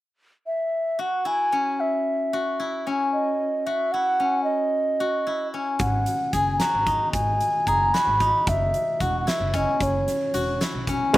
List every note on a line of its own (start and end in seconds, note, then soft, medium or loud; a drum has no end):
0.46 1.02 E5 medium
0.99 2.33 F#4 medium
0.99 1.28 F#5 medium
1.25 2.59 E4 medium
1.25 1.82 G#5 medium
1.52 2.86 C#4 medium
1.80 2.87 E5 medium
2.33 3.66 F#4 medium
2.60 3.93 E4 medium
2.87 4.19 C#4 medium
3.13 3.68 D#5 medium
3.66 5.00 F#4 medium
3.66 3.94 E5 medium
3.92 5.26 E4 medium
3.92 4.43 F#5 medium
4.20 5.53 C#4 medium
4.44 5.48 D#5 medium
5.00 6.60 F#4 medium
5.27 6.93 E4 medium
5.54 8.44 C#4 medium
5.79 6.04 G#1 medium
5.79 6.34 F#5 medium
5.79 kick medium
5.79 closed hi-hat medium
6.06 closed hi-hat medium
6.33 6.57 F#1 medium
6.33 7.67 G#4 medium
6.33 6.58 G#5 medium
6.33 kick medium
6.33 snare soft
6.33 closed hi-hat soft
6.59 7.94 F#4 medium
6.59 7.09 A#5 medium
6.59 snare medium
6.59 closed hi-hat medium
6.73 6.97 G#1 medium
6.87 8.20 D#4 medium
6.87 kick medium
6.87 closed hi-hat soft
7.13 7.38 G#1 medium
7.13 7.69 G#5 medium
7.13 kick medium
7.13 closed hi-hat medium
7.41 closed hi-hat medium
7.67 7.91 F#1 medium
7.67 9.95 G#4 medium
7.67 7.95 A#5 medium
7.67 kick medium
7.67 closed hi-hat soft
7.94 9.00 F#4 medium
7.94 8.50 B5 medium
7.94 snare medium
7.94 closed hi-hat medium
8.07 8.31 G#1 medium
8.20 9.33 D#4 medium
8.20 kick medium
8.20 closed hi-hat soft
8.47 8.71 F#1 medium
8.47 9.03 E5 medium
8.47 kick medium
8.47 closed hi-hat medium
8.74 closed hi-hat soft
9.00 9.25 E1 medium
9.00 10.34 F#4 medium
9.00 9.20 F#5 medium
9.00 kick medium
9.00 closed hi-hat soft
9.20 9.30 F#5 medium
9.27 10.60 E4 medium
9.27 9.57 E5 medium
9.27 snare medium
9.27 closed hi-hat medium
9.40 9.64 F#1 medium
9.54 10.88 C#4 medium
9.54 9.84 D#5 medium
9.54 kick medium
9.54 closed hi-hat soft
9.80 10.04 F#1 medium
9.80 10.62 C#5 medium
9.80 kick medium
9.80 closed hi-hat medium
10.08 snare soft
10.08 closed hi-hat medium
10.34 10.58 E1 medium
10.34 11.18 F#4 medium
10.34 closed hi-hat medium
10.61 11.18 E4 medium
10.61 snare medium
10.61 closed hi-hat medium
10.74 10.98 B1 medium
10.87 11.14 C#4 medium
10.87 kick medium
10.87 closed hi-hat soft
11.13 11.18 E2 medium
11.13 11.18 G#3 medium
11.13 11.18 C#4 medium
11.13 kick loud
11.13 closed hi-hat medium